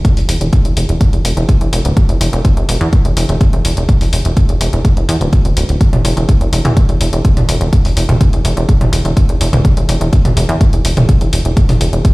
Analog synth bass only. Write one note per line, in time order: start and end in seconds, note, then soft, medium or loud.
0.17 0.25 E1 medium
0.29 0.37 E1 medium
0.41 0.49 E1 medium
0.65 0.73 E1 medium
0.77 0.85 E1 medium
0.89 0.97 E1 loud
1.13 1.21 E1 medium
1.25 1.33 E1 loud
1.37 1.45 E1 medium
1.61 1.69 E1 medium
1.73 1.81 E1 loud
1.85 1.93 D1 loud
2.09 2.17 E1 medium
2.21 2.29 E1 medium
2.33 2.41 E1 loud
2.57 2.65 E1 medium
2.69 2.77 E1 medium
2.81 2.89 E2 loud
3.05 3.13 E1 medium
3.17 3.25 E1 loud
3.29 3.37 E1 medium
3.53 3.61 E1 medium
3.65 3.73 E1 loud
3.77 3.85 E1 medium
4.01 4.09 E1 medium
4.13 4.21 E1 medium
4.25 4.33 E1 medium
4.49 4.57 E1 medium
4.61 4.69 E1 medium
4.73 4.81 E1 loud
4.97 5.05 E1 medium
5.09 5.17 E2 medium
5.21 5.29 D1 medium
5.45 5.53 D1 medium
5.57 5.65 D1 loud
5.69 5.77 D1 medium
5.93 6.01 E1 medium
6.05 6.13 E1 loud
6.17 6.25 E1 medium
6.41 6.49 E1 medium
6.53 6.61 E1 loud
6.65 6.73 E2 loud
6.89 6.97 E1 medium
7.01 7.09 E1 loud
7.13 7.21 E1 medium
7.37 7.45 E1 medium
7.49 7.57 E1 loud
7.61 7.69 E1 medium
7.85 7.93 E1 medium
7.97 8.05 E1 medium
8.09 8.17 E1 loud
8.33 8.41 E1 medium
8.45 8.53 E1 loud
8.57 8.65 E1 medium
8.81 8.89 E1 medium
8.93 9.01 E1 loud
9.05 9.13 E1 medium
9.29 9.37 E1 medium
9.41 9.49 E1 loud
9.53 9.61 D1 loud
9.77 9.85 E1 medium
9.89 9.97 E1 loud
10.01 10.09 E1 medium
10.25 10.33 E1 medium
10.37 10.45 E1 loud
10.49 10.57 E2 loud
10.73 10.81 E1 medium
10.85 10.93 E1 medium
10.97 11.05 E1 medium
11.21 11.29 E1 medium
11.33 11.41 E1 loud
11.45 11.53 E1 loud
11.69 11.77 E1 medium
11.81 11.89 E1 loud
11.93 12.01 E1 medium